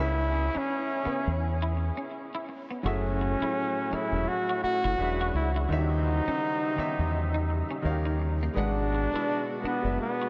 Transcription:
Already playing: grand piano C#3 C#4, horn section C#4 E4 G#4
0.00 fingered electric bass C#2, clean electric guitar C#4, flugelhorn E4, grand piano G#4 B4 E5
0.34 muted clean electric guitar stroke
0.55 clean electric guitar C#4, flugelhorn C#4, muted fingered electric bass stroke
1.03 grand piano C#3 C#4 G#4 B4, clean electric guitar B3, muted fingered electric bass stroke
1.07 grand piano C#5
1.27 fingered electric bass E2
1.62 clean electric guitar E4
1.77 muted clean electric guitar stroke
1.97 clean electric guitar C#4
2.35 clean electric guitar E4
2.49 muted clean electric guitar stroke
2.71 clean electric guitar B3
2.82 fingered electric bass F#1, tonewheel organ A2 A3 E4, grand piano F#3 C#4 G#4 A4, horn section A3 C#4 F#4, flugelhorn C#4, clean electric guitar F#4
2.87 grand piano E5
3.21 muted clean electric guitar stroke
3.40 grand piano F#3 C#4 G#4 A4 C#5, clean electric guitar E4, muted fingered electric bass stroke
3.90 grand piano F#3 C#4 G#4 A4 C#5, clean electric guitar C#4, flugelhorn E4, muted fingered electric bass stroke
4.12 fingered electric bass E1, grand piano F#3 C#4 G#4 A4 E5
4.28 flugelhorn F#4
4.49 clean electric guitar F#4
4.64 flugelhorn F#4, muted fingered electric bass stroke, muted clean electric guitar stroke
4.84 fingered electric bass F#1, clean electric guitar E4
4.97 fingered electric bass E1, grand piano E3 D4 F#4, tonewheel organ G#3 D4 F#4, horn section F#4 G#4 B4
5.01 grand piano G#4 E5
5.21 clean electric guitar F#4
5.34 fingered electric bass C#2, flugelhorn E4, muted clean electric guitar stroke
5.56 clean electric guitar E4
5.68 fingered electric bass D#2, tonewheel organ C#3 G3 E5, grand piano D#3 D#4 F4 C#5, horn section E3 G4 C5, flugelhorn D#4
5.72 clean electric guitar D#4, grand piano E5
5.77 grand piano G4
6.08 muted clean electric guitar stroke
6.28 clean electric guitar C#4, muted fingered electric bass stroke
6.76 grand piano D#3 D#4 G4 C#5 E5, clean electric guitar B3, muted fingered electric bass stroke
6.99 fingered electric bass E2
7.34 clean electric guitar D#4
7.50 muted clean electric guitar stroke
7.71 clean electric guitar C#4
7.82 fingered electric bass D#2, grand piano D#3 D#4 F#4 C#5, tonewheel organ G3 D#4, horn section D#4 G4 A#4
7.86 grand piano F5
7.91 grand piano G4
8.05 clean electric guitar D#4
8.22 muted clean electric guitar stroke
8.43 clean electric guitar A#3
8.54 fingered electric bass G#1, tonewheel organ B2 G#3 F#4, grand piano G#3 G#4 B4 D5 F#5, horn section B3 D4 F#4, flugelhorn D4
8.58 clean electric guitar G#3
8.95 muted clean electric guitar stroke
9.11 grand piano G#3 G#4 B4 D5, muted fingered electric bass stroke
9.15 clean electric guitar E4, grand piano E5
9.60 grand piano G#3 G#4 B4 D5 F#5, muted fingered electric bass stroke
9.65 flugelhorn B3, clean electric guitar D4
9.82 fingered electric bass F#1, grand piano G#3 G#4 B4 D5
9.86 grand piano E5
10.01 flugelhorn B3
10.22 clean electric guitar F#4

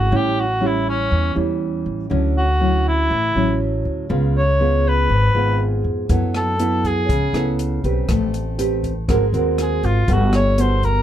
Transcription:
Already playing: upright bass G#1, cor anglais F#4
0.11 upright bass A1, nylon-string guitar A2 G3 C#4 E4
0.16 cor anglais G4
0.40 cor anglais F#4
0.60 nylon-string guitar G3 C#4 E4
0.66 cor anglais E4
0.89 cor anglais C#4
1.11 upright bass E2, nylon-string guitar E3
1.35 upright bass E2, nylon-string guitar G3 C#4 E4
1.86 upright bass A1
2.10 upright bass D2, nylon-string guitar D3 F#3 C#4 E4
2.38 cor anglais F#4
2.60 nylon-string guitar F#3 C#4 E4
2.88 cor anglais E4
3.10 upright bass A1, nylon-string guitar A2
3.35 upright bass A1, nylon-string guitar F#3 C#4 E4
3.85 upright bass D2
4.09 upright bass C#2, nylon-string guitar C#3 G#3 B3 F4
4.38 cor anglais C#5
4.60 nylon-string guitar G#3 B3 F4
4.88 cor anglais B4
5.09 upright bass G#1, nylon-string guitar G#2
5.34 upright bass G#1, nylon-string guitar G#3 B3 F4
5.84 upright bass F2
6.09 upright bass F#2, nylon-string guitar F#3 B3 E4 A4, kick, closed hi-hat
6.34 cor anglais A4, cross-stick, closed hi-hat
6.59 nylon-string guitar B3 E4 A4, closed hi-hat
6.84 cor anglais G#4, kick, closed hi-hat
7.09 upright bass C#2, nylon-string guitar C#3, kick, closed hi-hat
7.33 upright bass C#2, nylon-string guitar B3 E4 A4, cross-stick, closed hi-hat
7.59 closed hi-hat
7.84 upright bass B1, nylon-string guitar C4 G4 B4, kick, closed hi-hat
8.09 upright bass A1, nylon-string guitar A3, kick, cross-stick, closed hi-hat
8.34 closed hi-hat
8.58 nylon-string guitar C4 G4 B4, closed hi-hat
8.84 kick, closed hi-hat
9.08 upright bass G#1, nylon-string guitar G#3 C4 F#4 A#4, kick, cross-stick, closed hi-hat
9.33 upright bass D#2, nylon-string guitar C4 F#4 A#4, closed hi-hat
9.58 cor anglais G#4, cross-stick, closed hi-hat
9.83 upright bass G#1, cor anglais F4, kick, closed hi-hat
10.08 upright bass G1, nylon-string guitar G3 B3 F#4 A4, kick, closed hi-hat
10.12 cor anglais F#4
10.33 cor anglais C#5, cross-stick, closed hi-hat
10.58 nylon-string guitar B3 F#4 A4, cor anglais C5, closed hi-hat
10.83 cor anglais A#4, kick, closed hi-hat

